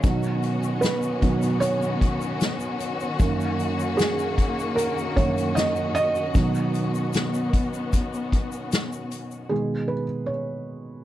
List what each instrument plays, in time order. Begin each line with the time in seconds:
Already playing: string section C#4
0.04 felt piano B2 D#3 F#3, string section D#3 B3 F#4, kick, closed hi-hat, shaker
0.23 shaker
0.43 closed hi-hat, shaker
0.63 shaker
0.81 felt piano B4, snare, closed hi-hat, shaker
1.02 shaker
1.22 felt piano B2 D#3 F#3, kick, closed hi-hat
1.42 closed hi-hat, shaker
1.60 felt piano C#5, closed hi-hat, shaker
1.82 shaker
2.01 kick, closed hi-hat
2.21 shaker
2.41 snare, closed hi-hat, shaker
2.60 shaker
2.80 closed hi-hat, shaker
3.00 shaker
3.19 felt piano F#2 D#3 A#3, string section A#3, kick, closed hi-hat, shaker
3.41 shaker
3.59 closed hi-hat, shaker
3.79 shaker
3.97 felt piano G#4, snare, closed hi-hat, shaker
4.19 shaker
4.38 kick, closed hi-hat
4.59 shaker
4.76 felt piano A#4, closed hi-hat, shaker
4.98 shaker
5.16 felt piano F#2 D#3 A#3 C#5, kick, closed hi-hat
5.38 closed hi-hat, shaker
5.55 felt piano D#5, snare, closed hi-hat, shaker
5.76 shaker
5.95 felt piano D#5, closed hi-hat, shaker
6.15 shaker
6.34 felt piano B2 D#3 F#3, string section B3, kick, closed hi-hat, shaker
6.55 shaker
6.74 closed hi-hat, shaker
6.95 shaker
7.13 snare, closed hi-hat, shaker
7.34 shaker
7.53 kick, closed hi-hat
7.74 shaker
7.93 kick, closed hi-hat, shaker
8.14 shaker
8.32 kick, closed hi-hat
8.52 shaker
8.72 snare, closed hi-hat, shaker
8.92 shaker
9.11 closed hi-hat, shaker
9.31 shaker
9.49 felt piano B2 D#3 G#3 G#4
9.88 felt piano B4
10.26 felt piano C#5